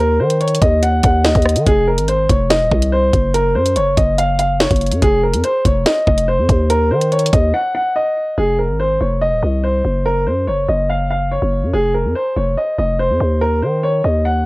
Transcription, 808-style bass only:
Already playing: D#2
0.20 D#3
0.62 D#2
1.04 D#2
1.35 D#2
1.56 D#3
1.67 F1
1.98 G#1
2.29 F1
2.61 D#1
2.71 C2
3.13 F#1
3.55 F#2
3.76 F#1
3.97 F#1
4.71 F#1
4.92 F#2
5.02 F1
5.34 F2
5.65 F1
6.07 F1
6.38 F2
6.49 D#2
6.91 D#3
7.33 D#2
8.38 F1
8.69 G#1
9.01 F1
9.32 D#1
9.43 C2
9.85 F#1
10.27 F#2
10.48 F#1
10.69 F#1
11.42 F#1
11.63 F#2
11.73 F1
12.05 F2
12.36 F1
12.78 F1
13.10 F2
13.20 D#2
13.62 D#3
14.04 D#2

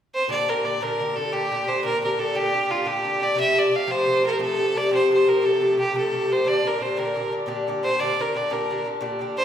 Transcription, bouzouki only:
0.28 A#2 D3 D4 G4
0.48 A#2 D3 D4 G4
0.63 A#2 D3 D4 G4
0.81 A#2 D3 D4 G4
1.00 A#2 D3 D4 G4
1.16 A#2 D3 D4 G4
1.32 A#2 D3 D4 G4
1.51 A#2 D3 D4 G4
1.67 A#2 D3 D4 G4
1.83 A#2 D3 D4 G4
2.03 A#2 D3 D4 G4
2.17 A#2 D3 D4 G4
2.35 A#2 D3 D4 G4
2.52 A#2 D3 D4 G4
2.69 A#2 D3 D4 G4
2.85 A#2 D3 D4 G4
3.03 A#2 D3 D4 G4
3.20 A#2 D3 D4 G4
3.35 C3 F3 A3 G4
3.53 C3 F3 A3 G4
3.69 C3 F3 A3 G4
3.87 C3 F3 A3 G4
4.06 C3 F3 A3 G4
4.22 C3 F3 A3 G4
4.39 C3 F3 A3 G4
4.57 C3 F3 A3 G4
4.74 C3 F3 A3 G4
4.90 C3 F3 A3 G4
5.08 C3 F3 A3 G4
5.25 C3 F3 A3 G4
5.42 C3 F3 A3 G4
5.60 C3 F3 A3 G4
5.77 C3 F3 A3 G4
5.93 C3 F3 A3 G4
6.12 C3 F3 A3 G4
6.27 C3 F3 A3 G4
6.44 A#2 D3 D4 G4
6.63 A#2 D3 D4 G4
6.80 A#2 D3 D4 G4
6.96 A#2 D3 D4 G4
7.15 A#2 D3 D4 G4
7.31 A#2 D3 D4 G4
7.46 A#2 D3 D4 G4
7.67 A#2 D3 D4 G4
7.83 A#2 D3 D4 G4
8.00 A#2 D3 D4 G4
8.18 A#2 D3 D4 G4
8.34 A#2 D3 D4 G4
8.50 A#2 D3 D4 G4
8.70 A#2 D3 D4 G4
8.85 A#2 D3 D4 G4
9.01 A#2 D3 D4 G4
9.19 A#2 D3 D4 G4
9.37 A#2 D3 D4 G4

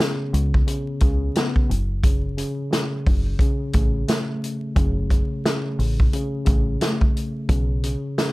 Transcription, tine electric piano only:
Already playing: B3
0.00 C#3
0.67 C#3
1.03 C#3
1.37 B3
2.03 C#3
2.37 C#3
2.71 C#3
3.41 C#3
3.74 C#3
4.08 A3
4.76 C#3
5.11 C#3
5.46 C#3
6.13 C#3
6.45 C#3
6.81 A3
7.49 C#3
7.84 C#3
8.18 C#3

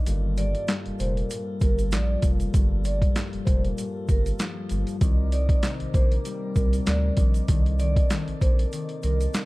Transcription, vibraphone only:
0.38 D5
1.00 C5
1.61 A#4
1.93 D5
2.85 D5
3.45 C5
4.10 A#4
5.33 D5
5.94 C5
6.56 A#4
6.86 D5
7.79 D5
8.41 C5
9.04 A#4

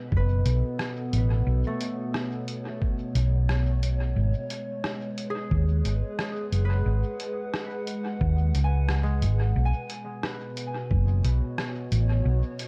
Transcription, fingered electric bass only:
0.12 F#1
0.46 B1
1.13 A1
1.47 B1
3.15 B1
4.16 G#1
5.51 D#2
5.85 G#1
6.52 F#1
6.86 G#1
8.21 D#2
8.55 C#2
9.22 G#1
9.56 B1
10.91 F#1
11.24 B1
11.92 A1
12.25 B1

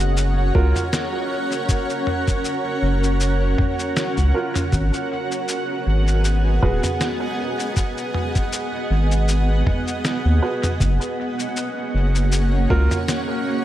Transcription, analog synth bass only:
Already playing: F#1
0.55 C#2
2.83 F#1
4.18 C#2
4.73 G#1
5.87 G#1
6.63 D#1
8.91 G#1
10.26 D#2
10.80 F#1
11.95 F#1
12.70 C#2

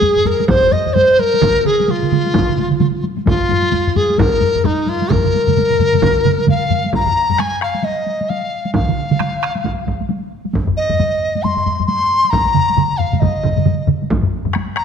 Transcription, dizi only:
Already playing: G#4
0.26 A#4
0.48 C5
0.72 D#5
0.93 C5
1.19 A#4
1.66 G#4
1.90 F4
3.28 F4
3.96 G#4
4.18 A#4
4.65 D#4
4.89 F4
5.11 A#4
6.49 F5
6.94 A#5
7.39 G#5
7.62 F5
7.84 D#5
8.29 F5
8.74 F5
10.77 D#5
11.43 C6
11.86 C6
12.30 A#5
12.97 F5
13.20 D#5
14.77 A#5

